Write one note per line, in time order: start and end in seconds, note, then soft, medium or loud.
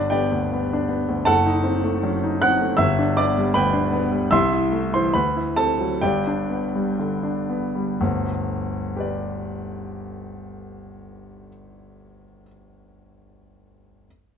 0.00 1.25 G1 medium
0.00 0.25 D4 medium
0.00 0.10 B4 medium
0.00 0.10 D5 loud
0.10 0.44 B3 medium
0.10 0.86 G4 medium
0.10 0.86 D5 medium
0.10 0.89 G5 medium
0.32 0.63 D2 medium
0.53 0.83 B3 medium
0.73 1.03 D4 medium
0.89 1.20 B3 medium
1.09 1.28 D2 medium
1.25 2.75 F#1 medium
1.25 2.37 A4 medium
1.25 2.37 F#5 loud
1.25 2.40 A5 loud
1.46 1.77 D#4 medium
1.64 1.95 C4 medium
1.84 2.15 A3 medium
2.03 2.34 F#2 medium
2.24 2.54 D#4 medium
2.42 2.73 C4 medium
2.42 2.78 F#5 loud
2.42 2.80 F#6 loud
2.60 2.79 A3 medium
2.77 4.29 G1 loud
2.77 3.14 E5 loud
2.77 3.16 E6 loud
2.99 3.29 D4 medium
3.17 3.48 B3 medium
3.17 3.53 D5 medium
3.17 3.56 D6 loud
3.38 3.68 G3 medium
3.54 3.86 D2 medium
3.54 4.29 B4 medium
3.54 4.29 G5 medium
3.54 4.33 B5 loud
3.73 4.05 D4 medium
3.93 4.25 B3 medium
4.12 4.33 G3 medium
4.31 5.11 C2 loud
4.31 4.89 E5 loud
4.31 4.89 C6 loud
4.31 4.92 E6 loud
4.52 4.85 E4 medium
4.72 5.05 A3 medium
4.94 5.15 E3 medium
4.94 5.14 C5 medium
4.94 5.14 C6 loud
5.14 6.00 D2 medium
5.14 5.55 B4 medium
5.14 5.57 B5 loud
5.36 5.71 E4 medium
5.56 5.93 C4 medium
5.56 5.99 A4 medium
5.56 6.02 A5 loud
5.81 6.03 F#3 medium
6.02 7.94 G1 medium
6.02 7.95 G2 medium
6.02 6.95 G4 medium
6.02 6.95 D5 medium
6.02 6.99 G5 loud
6.27 6.65 D4 medium
6.50 6.89 B3 medium
6.75 7.14 G3 medium
6.99 7.39 D3 medium
7.23 7.64 D4 medium
7.50 7.89 B3 medium
7.75 7.99 G3 medium
8.01 11.47 G1 medium
8.01 11.48 D2 medium
8.96 12.43 G4 medium
8.96 12.45 B4 medium
8.96 12.47 D5 medium